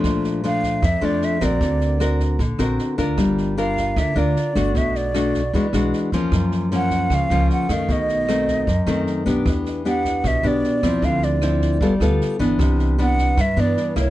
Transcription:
<<
  \new Staff \with { instrumentName = "Flute" } { \time 4/4 \key b \minor \tempo 4 = 153 r4 f''4 e''8 d''8 e''8 d''8~ | d''4. r2 r8 | r4 f''4 e''8 d''4. | e''8 d''2 r4. |
r4 fis''4 eis''4 fis''8 eis''8 | dis''2. r4 | r4 fis''4 e''8 d''4. | f''8 d''2 r4. |
r4 fis''4 e''8 d''4 cis''8 | }
  \new Staff \with { instrumentName = "Nylon-string guitar" } { \time 4/4 \key b \minor << { <f a d'>4 <f a d'>4 r8 <f a d'>4 <c' fis' bes'>8~ | <c' fis' bes'>4 <c' fis' ais'>4 r8 <c' fis' ais'>4 <d' eis' ais'>8~ | <d' eis' ais'>4 <d' f' bes'>4. <d' f' bes'>4 <a d' fis'>8~ | <a d' fis'>4 <a d' fis'>8 r8 <gis d' fis'>8 <gis d' fis'>4 <f bes cis'>8~ |
<f bes cis'>4 <eis ais cis'>4. <eis ais cis'>4 <ees a>8~ | <ees a>4 <dis a c'>4 r8 <dis a c'>4 <b d' g'>8~ | <b d' g'>4 <b d' g'>4. <b d' g'>4 <f c' e'>8~ | <f c' e'>4 <f c' e'>4 <b f' a'>8 <b f' a'>4 <e b d'>8~ |
<e b d'>4 <e b d'>4 r8 <e b d'>4 <bes e'>8 | } \\ { bes,2 f,2 | d2 d2 | g2 d2 | b,2 e2 |
fis,2 cis2 | b,2 fis,2 | e2 b,2 | d2 g2 |
c2 g,2 | } >> }
  \new Staff \with { instrumentName = "Upright bass" } { \clef bass \time 4/4 \key b \minor bes,,2 f,8 f,8 r8 bes,,8 | d,2 ais,,8 ais,,8 r8 d,8 | g,,2 d,8 d,8 r8 g,,8 | b,,2 e,8 b,,8 r8 e,8 |
fis,2 cis,8 cis,8 r8 fis,8 | b,,2 fis,8 fis,8 r8 b,,8 | e,2 b,,8 b,,8 r8 e,8 | d,2 g,,8 d,8 r8 g,,8 |
c,2 g,8 g,8 r8 c,8 | }
  \new DrumStaff \with { instrumentName = "Drums" } \drummode { \time 4/4 <bd ss sn>8 sn8 sn8 <bd sn>8 <bd ss sn>8 sn8 sn8 <bd ss sn>8 | <bd sn>8 sn8 <ss sn>8 <bd sn>8 <bd sn>8 <ss sn>8 sn8 <bd sn>8 | <bd ss sn>8 sn8 sn8 <bd sn>8 <bd ss sn>8 sn8 sn8 <bd ss sn>8 | <bd sn>8 sn8 <ss sn>8 <bd sn>8 <bd sn>8 <ss sn>8 sn8 <bd sn>8 |
<bd ss sn>8 sn8 sn8 <bd sn>8 <bd ss sn>8 sn8 sn8 <bd ss sn>8 | <bd sn>8 sn8 <ss sn>8 <bd sn>8 <bd sn>8 <ss sn>8 sn8 <bd sn>8 | <bd ss sn>8 sn8 sn8 <bd sn>8 <bd ss sn>8 sn8 sn8 <bd ss sn>8 | <bd sn>8 sn8 <ss sn>8 <bd sn>8 <bd sn>8 <ss sn>8 sn8 <bd sn>8 |
<bd ss sn>8 sn8 sn8 <bd sn>8 <bd ss sn>8 sn8 sn8 <bd ss sn>8 | }
>>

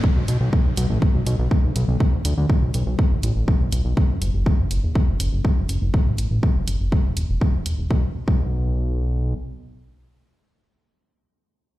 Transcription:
<<
  \new Staff \with { instrumentName = "Analog synth bass" } { \clef bass \time 4/4 \key b \minor \tempo 4 = 122 r16 b,,16 b,,16 b,,16 r16 b,,16 b,,16 a,,16 r16 b,,16 b,,16 b,,16 r16 b,,16 b,,16 b,,16 | r16 d,16 d,16 d,16 r16 b,,16 b,,16 b,,16 r16 a,,16 a,,16 a,,16 r16 b,,16 b,,16 b,,16 | r16 fis,,16 fis,,16 fis,,16 r16 fis,,16 fis,,16 e,,16 r16 fis,,16 fis,,16 fis,,16 r16 fis,,16 fis,,16 fis,,16 | r16 a,,16 a,,16 a,,16 r16 fis,,16 fis,,16 fis,,16 r16 e,,16 e,,16 e,,16 r16 e,,16 e,,16 e,,16 |
b,,16 r8 b,,2~ b,,16 r4 | r1 | }
  \new DrumStaff \with { instrumentName = "Drums" } \drummode { \time 4/4 bd8 hh8 bd8 hh8 bd8 hh8 bd8 hh8 | bd8 hh8 bd8 hh8 bd8 hh8 bd8 hh8 | bd8 hh8 bd8 hh8 bd8 hh8 bd8 hh8 | bd8 hh8 bd8 hh8 bd8 hh8 bd8 hh8 |
bd8. bd16 r4 r4 r4 | r4 r4 r4 r4 | }
>>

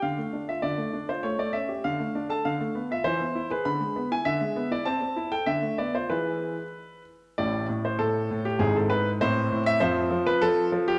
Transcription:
<<
  \new Staff \with { instrumentName = "Grand piano" } { \time 2/4 \key d \dorian \tempo 4 = 99 << { f''8. e''16 d''8. c''16 | cis''16 d''16 e''8 f''8. a''16 | \key a \minor f''8. e''16 c''8. b'16 | b''8. gis''16 e''8. d''16 |
a''8. g''16 e''8 d''16 c''16 | b'4. r8 | d''8. c''16 a'8. g'16 | gis'16 a'16 b'8 c''8. e''16 |
c''8. b'16 a'8. g'16 | } \\ { r2 | r2 | r2 | r2 |
r2 | r2 | e'2 | e'4 <c' e'>4 |
<c' f'>2 | } >> }
  \new Staff \with { instrumentName = "Grand piano" } { \time 2/4 \key d \dorian d16 a16 d'16 f'16 d16 a16 d'16 f'16 | a16 a16 cis'16 g'16 d16 a16 d'16 a'16 | \key a \minor d16 a16 b16 f'16 e16 b16 e'16 gis'16 | d16 gis16 b16 e'16 d16 gis16 b16 e'16 |
c'16 c'16 e'16 a'16 d16 a16 b16 f'16 | <e e' gis'>4 r4 | <a,, a,>8 a,8 a,8 a,8 | <gis,, gis,>8 gis,8 a,8 a,8 |
<f, f>8 f8 f8 f8 | }
>>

